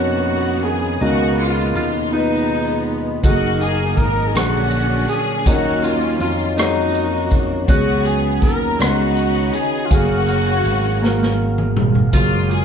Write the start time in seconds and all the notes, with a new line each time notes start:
Already playing: F2 B2 D#3 A#3 B3 C#4 D#4 F#4 A#4 C#5
0.64 G#4
1.01 C#2 B2 C#3 D#3 A#3 B3 D#4 F#4 G#4 A#4 F5
1.38 F4
1.75 D#2 F4
2.12 G#3 B3 D#4 F4 B4
3.23 F#1 F#3 A3 A#3 D#4 F#4 G#4, kick, closed hi-hat
3.30 A#3 G#4
3.60 G#4, closed hi-hat
3.97 G#1 A#4, kick, closed hi-hat
4.27 G#4
4.34 A#1 A#2 D3 F#3 A#3 C#4 D4 F#4 G4, cross-stick, closed hi-hat
4.40 G#4
4.71 closed hi-hat
5.08 G#4, closed hi-hat
5.39 G#4
5.46 D#2 D#3 A#3 C#4 D#4 F4 F#4 G#4 A#4, kick, closed hi-hat
5.53 F#3 A#4
5.84 F4, closed hi-hat
6.20 F2 F4, closed hi-hat
6.57 A#3 C#4 D#4 F#4 C#5, cross-stick, closed hi-hat
6.94 closed hi-hat
7.31 kick, closed hi-hat
7.67 C#2 C#3 F#3 B3 C#4 F#4 G#4, kick, closed hi-hat
8.05 G#4, closed hi-hat
8.42 D#2 A#4, kick, closed hi-hat
8.79 C#2 C#3 D#3 B3 C#4 D#4 F#4, cross-stick, closed hi-hat
9.17 closed hi-hat
9.53 G#4, closed hi-hat
9.86 F4
9.90 F#1 F#3 A3 A#3 C#4 F#4 G#4 F5, kick, closed hi-hat
9.96 A#3
10.28 closed hi-hat
10.65 G#1, closed hi-hat
11.01 A#3 F#4 A#4 F5, snare
11.23 snare
11.58 mid tom
11.77 mid tom
11.95 floor tom
12.13 F#1 F#3 G#3 A#3 F4 G#4, kick, closed hi-hat
12.50 G#4, closed hi-hat